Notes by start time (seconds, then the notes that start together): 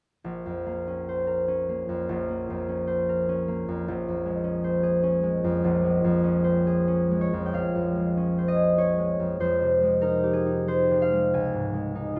0.24 A#1
0.46 F2
0.66 A#3
0.87 C#4
1.09 C5
1.27 A#4
1.48 C#4
1.69 A#3
1.89 F2
2.09 A#1
2.29 A#3
2.50 F2
2.69 C#4
2.87 C5
3.09 A#4
3.29 C#4
3.48 A#3
3.68 F2
3.88 A#1
4.08 F2
4.26 G#3
4.44 C#4
4.64 C5
4.83 G#4
5.03 C#4
5.23 G#3
5.44 F2
5.64 A#1
5.84 G#3
6.04 F2
6.24 C#4
6.44 C5
6.67 G#4
6.88 C#4
7.11 G#3
7.21 C#5
7.33 F2
7.46 G5
7.53 A#1 F5
7.75 F2
7.96 G#3
8.17 C#4
8.38 C5
8.48 D#5
8.56 G#4
8.78 C#4 C#5
8.98 G#3
9.20 F2
9.40 F2 C5
9.62 C3
9.83 G#3
10.02 D#4 A#4
10.23 G4
10.33 G#4
10.46 D#4
10.67 G#3 C5
10.91 C3
11.02 F5
11.12 G#3
11.34 C#2 G#5
11.53 G#2
11.74 G#3
11.95 D#4
12.16 F4